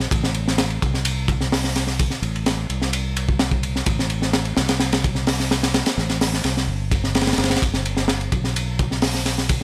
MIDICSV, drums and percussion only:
0, 0, Header, 1, 2, 480
1, 0, Start_track
1, 0, Key_signature, 0, "minor"
1, 0, Tempo, 468750
1, 119, Time_signature, 4, 2, 24, 8
1, 9862, End_track
2, 0, Start_track
2, 0, Title_t, "Drums"
2, 0, Note_on_c, 9, 38, 38
2, 102, Note_off_c, 9, 38, 0
2, 116, Note_on_c, 9, 36, 111
2, 121, Note_on_c, 9, 51, 89
2, 218, Note_off_c, 9, 36, 0
2, 223, Note_off_c, 9, 51, 0
2, 241, Note_on_c, 9, 38, 52
2, 344, Note_off_c, 9, 38, 0
2, 352, Note_on_c, 9, 51, 66
2, 454, Note_off_c, 9, 51, 0
2, 487, Note_on_c, 9, 38, 54
2, 589, Note_off_c, 9, 38, 0
2, 596, Note_on_c, 9, 38, 110
2, 596, Note_on_c, 9, 51, 91
2, 698, Note_off_c, 9, 38, 0
2, 698, Note_off_c, 9, 51, 0
2, 720, Note_on_c, 9, 51, 42
2, 822, Note_off_c, 9, 51, 0
2, 843, Note_on_c, 9, 36, 89
2, 844, Note_on_c, 9, 51, 65
2, 946, Note_off_c, 9, 36, 0
2, 947, Note_off_c, 9, 51, 0
2, 963, Note_on_c, 9, 38, 39
2, 1065, Note_off_c, 9, 38, 0
2, 1074, Note_on_c, 9, 51, 96
2, 1177, Note_off_c, 9, 51, 0
2, 1313, Note_on_c, 9, 36, 100
2, 1319, Note_on_c, 9, 51, 62
2, 1416, Note_off_c, 9, 36, 0
2, 1422, Note_off_c, 9, 51, 0
2, 1440, Note_on_c, 9, 38, 43
2, 1542, Note_off_c, 9, 38, 0
2, 1561, Note_on_c, 9, 38, 122
2, 1565, Note_on_c, 9, 46, 79
2, 1663, Note_off_c, 9, 38, 0
2, 1667, Note_off_c, 9, 46, 0
2, 1681, Note_on_c, 9, 38, 56
2, 1783, Note_off_c, 9, 38, 0
2, 1797, Note_on_c, 9, 51, 66
2, 1801, Note_on_c, 9, 38, 53
2, 1900, Note_off_c, 9, 51, 0
2, 1903, Note_off_c, 9, 38, 0
2, 1915, Note_on_c, 9, 38, 38
2, 2018, Note_off_c, 9, 38, 0
2, 2041, Note_on_c, 9, 51, 93
2, 2044, Note_on_c, 9, 36, 126
2, 2144, Note_off_c, 9, 51, 0
2, 2146, Note_off_c, 9, 36, 0
2, 2154, Note_on_c, 9, 38, 38
2, 2256, Note_off_c, 9, 38, 0
2, 2281, Note_on_c, 9, 51, 63
2, 2383, Note_off_c, 9, 51, 0
2, 2412, Note_on_c, 9, 51, 39
2, 2515, Note_off_c, 9, 51, 0
2, 2521, Note_on_c, 9, 51, 85
2, 2523, Note_on_c, 9, 38, 119
2, 2623, Note_off_c, 9, 51, 0
2, 2626, Note_off_c, 9, 38, 0
2, 2762, Note_on_c, 9, 51, 66
2, 2864, Note_off_c, 9, 51, 0
2, 2883, Note_on_c, 9, 38, 48
2, 2986, Note_off_c, 9, 38, 0
2, 3001, Note_on_c, 9, 51, 88
2, 3103, Note_off_c, 9, 51, 0
2, 3241, Note_on_c, 9, 51, 73
2, 3343, Note_off_c, 9, 51, 0
2, 3364, Note_on_c, 9, 36, 93
2, 3467, Note_off_c, 9, 36, 0
2, 3475, Note_on_c, 9, 38, 123
2, 3477, Note_on_c, 9, 51, 85
2, 3577, Note_off_c, 9, 38, 0
2, 3580, Note_off_c, 9, 51, 0
2, 3599, Note_on_c, 9, 36, 105
2, 3701, Note_off_c, 9, 36, 0
2, 3718, Note_on_c, 9, 51, 70
2, 3821, Note_off_c, 9, 51, 0
2, 3847, Note_on_c, 9, 38, 42
2, 3950, Note_off_c, 9, 38, 0
2, 3954, Note_on_c, 9, 51, 95
2, 3958, Note_on_c, 9, 36, 105
2, 4057, Note_off_c, 9, 51, 0
2, 4060, Note_off_c, 9, 36, 0
2, 4088, Note_on_c, 9, 38, 52
2, 4191, Note_off_c, 9, 38, 0
2, 4196, Note_on_c, 9, 51, 70
2, 4299, Note_off_c, 9, 51, 0
2, 4322, Note_on_c, 9, 38, 48
2, 4424, Note_off_c, 9, 38, 0
2, 4438, Note_on_c, 9, 38, 113
2, 4438, Note_on_c, 9, 51, 80
2, 4540, Note_off_c, 9, 38, 0
2, 4540, Note_off_c, 9, 51, 0
2, 4558, Note_on_c, 9, 51, 51
2, 4660, Note_off_c, 9, 51, 0
2, 4675, Note_on_c, 9, 38, 101
2, 4681, Note_on_c, 9, 51, 77
2, 4778, Note_off_c, 9, 38, 0
2, 4783, Note_off_c, 9, 51, 0
2, 4799, Note_on_c, 9, 51, 85
2, 4803, Note_on_c, 9, 38, 103
2, 4901, Note_off_c, 9, 51, 0
2, 4906, Note_off_c, 9, 38, 0
2, 4911, Note_on_c, 9, 38, 104
2, 4918, Note_on_c, 9, 51, 71
2, 5013, Note_off_c, 9, 38, 0
2, 5020, Note_off_c, 9, 51, 0
2, 5043, Note_on_c, 9, 51, 76
2, 5049, Note_on_c, 9, 38, 111
2, 5145, Note_off_c, 9, 51, 0
2, 5152, Note_off_c, 9, 38, 0
2, 5163, Note_on_c, 9, 51, 69
2, 5164, Note_on_c, 9, 36, 99
2, 5265, Note_off_c, 9, 51, 0
2, 5267, Note_off_c, 9, 36, 0
2, 5274, Note_on_c, 9, 38, 41
2, 5377, Note_off_c, 9, 38, 0
2, 5395, Note_on_c, 9, 46, 82
2, 5399, Note_on_c, 9, 38, 114
2, 5497, Note_off_c, 9, 46, 0
2, 5502, Note_off_c, 9, 38, 0
2, 5527, Note_on_c, 9, 38, 54
2, 5629, Note_off_c, 9, 38, 0
2, 5644, Note_on_c, 9, 38, 107
2, 5646, Note_on_c, 9, 51, 73
2, 5746, Note_off_c, 9, 38, 0
2, 5749, Note_off_c, 9, 51, 0
2, 5768, Note_on_c, 9, 38, 92
2, 5771, Note_on_c, 9, 51, 84
2, 5871, Note_off_c, 9, 38, 0
2, 5874, Note_off_c, 9, 51, 0
2, 5880, Note_on_c, 9, 51, 75
2, 5881, Note_on_c, 9, 38, 115
2, 5982, Note_off_c, 9, 51, 0
2, 5984, Note_off_c, 9, 38, 0
2, 6000, Note_on_c, 9, 51, 84
2, 6007, Note_on_c, 9, 38, 100
2, 6102, Note_off_c, 9, 51, 0
2, 6109, Note_off_c, 9, 38, 0
2, 6128, Note_on_c, 9, 38, 44
2, 6231, Note_off_c, 9, 38, 0
2, 6241, Note_on_c, 9, 51, 56
2, 6242, Note_on_c, 9, 38, 45
2, 6343, Note_off_c, 9, 51, 0
2, 6345, Note_off_c, 9, 38, 0
2, 6360, Note_on_c, 9, 46, 69
2, 6362, Note_on_c, 9, 38, 98
2, 6463, Note_off_c, 9, 46, 0
2, 6465, Note_off_c, 9, 38, 0
2, 6487, Note_on_c, 9, 38, 54
2, 6590, Note_off_c, 9, 38, 0
2, 6593, Note_on_c, 9, 51, 69
2, 6604, Note_on_c, 9, 38, 48
2, 6695, Note_off_c, 9, 51, 0
2, 6706, Note_off_c, 9, 38, 0
2, 6730, Note_on_c, 9, 38, 47
2, 6832, Note_off_c, 9, 38, 0
2, 7081, Note_on_c, 9, 36, 107
2, 7082, Note_on_c, 9, 51, 86
2, 7183, Note_off_c, 9, 36, 0
2, 7184, Note_off_c, 9, 51, 0
2, 7207, Note_on_c, 9, 38, 42
2, 7309, Note_off_c, 9, 38, 0
2, 7319, Note_on_c, 9, 51, 67
2, 7326, Note_on_c, 9, 38, 85
2, 7385, Note_off_c, 9, 51, 0
2, 7385, Note_on_c, 9, 51, 68
2, 7390, Note_off_c, 9, 38, 0
2, 7390, Note_on_c, 9, 38, 84
2, 7446, Note_off_c, 9, 51, 0
2, 7446, Note_on_c, 9, 51, 74
2, 7447, Note_off_c, 9, 38, 0
2, 7447, Note_on_c, 9, 38, 88
2, 7503, Note_off_c, 9, 38, 0
2, 7503, Note_on_c, 9, 38, 86
2, 7505, Note_off_c, 9, 51, 0
2, 7505, Note_on_c, 9, 51, 64
2, 7554, Note_off_c, 9, 51, 0
2, 7554, Note_on_c, 9, 51, 67
2, 7560, Note_off_c, 9, 38, 0
2, 7560, Note_on_c, 9, 38, 88
2, 7613, Note_off_c, 9, 51, 0
2, 7613, Note_on_c, 9, 51, 66
2, 7620, Note_off_c, 9, 38, 0
2, 7620, Note_on_c, 9, 38, 81
2, 7682, Note_off_c, 9, 38, 0
2, 7682, Note_on_c, 9, 38, 85
2, 7688, Note_off_c, 9, 51, 0
2, 7688, Note_on_c, 9, 51, 63
2, 7744, Note_off_c, 9, 38, 0
2, 7744, Note_on_c, 9, 38, 77
2, 7745, Note_off_c, 9, 51, 0
2, 7745, Note_on_c, 9, 51, 66
2, 7805, Note_on_c, 9, 36, 103
2, 7809, Note_off_c, 9, 51, 0
2, 7809, Note_on_c, 9, 51, 80
2, 7846, Note_off_c, 9, 38, 0
2, 7907, Note_off_c, 9, 36, 0
2, 7911, Note_off_c, 9, 51, 0
2, 7922, Note_on_c, 9, 38, 49
2, 8024, Note_off_c, 9, 38, 0
2, 8043, Note_on_c, 9, 51, 68
2, 8145, Note_off_c, 9, 51, 0
2, 8158, Note_on_c, 9, 38, 54
2, 8260, Note_off_c, 9, 38, 0
2, 8273, Note_on_c, 9, 38, 122
2, 8287, Note_on_c, 9, 51, 77
2, 8376, Note_off_c, 9, 38, 0
2, 8389, Note_off_c, 9, 51, 0
2, 8405, Note_on_c, 9, 51, 49
2, 8507, Note_off_c, 9, 51, 0
2, 8521, Note_on_c, 9, 36, 95
2, 8521, Note_on_c, 9, 51, 63
2, 8623, Note_off_c, 9, 51, 0
2, 8624, Note_off_c, 9, 36, 0
2, 8644, Note_on_c, 9, 38, 43
2, 8747, Note_off_c, 9, 38, 0
2, 8767, Note_on_c, 9, 51, 91
2, 8869, Note_off_c, 9, 51, 0
2, 9002, Note_on_c, 9, 51, 62
2, 9004, Note_on_c, 9, 36, 90
2, 9105, Note_off_c, 9, 51, 0
2, 9106, Note_off_c, 9, 36, 0
2, 9126, Note_on_c, 9, 38, 41
2, 9229, Note_off_c, 9, 38, 0
2, 9234, Note_on_c, 9, 46, 83
2, 9240, Note_on_c, 9, 38, 118
2, 9337, Note_off_c, 9, 46, 0
2, 9342, Note_off_c, 9, 38, 0
2, 9362, Note_on_c, 9, 38, 54
2, 9464, Note_off_c, 9, 38, 0
2, 9479, Note_on_c, 9, 38, 52
2, 9480, Note_on_c, 9, 51, 68
2, 9581, Note_off_c, 9, 38, 0
2, 9583, Note_off_c, 9, 51, 0
2, 9606, Note_on_c, 9, 38, 42
2, 9708, Note_off_c, 9, 38, 0
2, 9719, Note_on_c, 9, 51, 98
2, 9723, Note_on_c, 9, 36, 106
2, 9822, Note_off_c, 9, 51, 0
2, 9825, Note_off_c, 9, 36, 0
2, 9862, End_track
0, 0, End_of_file